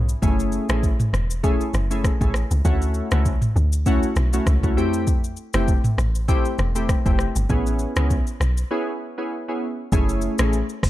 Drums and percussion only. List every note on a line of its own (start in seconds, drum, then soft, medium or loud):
0.09 shaker loud
0.23 kick medium
0.23 shaker medium
0.40 shaker medium
0.52 shaker medium
0.69 cross-stick loud
0.69 shaker medium
0.83 kick loud
0.83 shaker medium
1.00 mid tom medium
1.00 shaker medium
1.14 cross-stick medium
1.14 shaker medium
1.30 shaker medium
1.44 kick loud
1.44 shaker medium
1.61 shaker medium
1.74 cross-stick medium
1.74 shaker medium
1.91 shaker medium
2.04 kick medium
2.04 cross-stick medium
2.04 shaker medium
2.21 kick loud
2.21 shaker medium
2.34 cross-stick loud
2.34 shaker soft
2.51 shaker loud
2.65 kick loud
2.65 shaker medium
2.82 shaker medium
2.94 shaker medium
3.11 cross-stick loud
3.11 shaker medium
3.25 kick medium
3.25 shaker medium
3.42 mid tom medium
3.42 shaker medium
3.56 shaker medium
3.73 shaker medium
3.86 kick loud
3.86 shaker medium
4.03 shaker medium
4.16 cross-stick medium
4.16 shaker medium
4.33 shaker loud
4.47 kick medium
4.47 cross-stick medium
4.47 shaker medium
4.63 kick loud
4.63 shaker medium
4.78 shaker soft
4.93 shaker loud
5.07 kick loud
5.07 shaker medium
5.24 shaker medium
5.37 shaker medium
5.53 cross-stick loud
5.53 shaker medium
5.68 kick loud
5.68 shaker medium
5.84 mid tom medium
5.84 shaker medium
5.98 cross-stick medium
5.98 shaker medium
6.15 shaker medium
6.29 kick loud
6.29 shaker medium
6.45 shaker medium
6.58 cross-stick medium
6.58 shaker medium
6.76 shaker loud
6.89 kick medium
6.89 cross-stick medium
6.89 shaker medium
7.06 kick loud
7.06 shaker medium
7.19 cross-stick medium
7.19 shaker soft
7.36 shaker loud
7.50 kick loud
7.50 shaker medium
7.67 shaker medium
7.79 shaker medium
7.96 cross-stick loud
7.96 shaker medium
8.10 kick medium
8.10 shaker medium
8.27 shaker medium
8.41 cross-stick medium
8.41 shaker medium
8.57 shaker medium
9.92 kick loud
9.92 shaker medium
10.09 shaker medium
10.21 shaker medium
10.38 cross-stick loud
10.38 shaker loud
10.53 shaker medium
10.69 shaker medium
10.83 kick medium
10.83 cross-stick medium
10.83 open hi-hat medium
10.83 shaker medium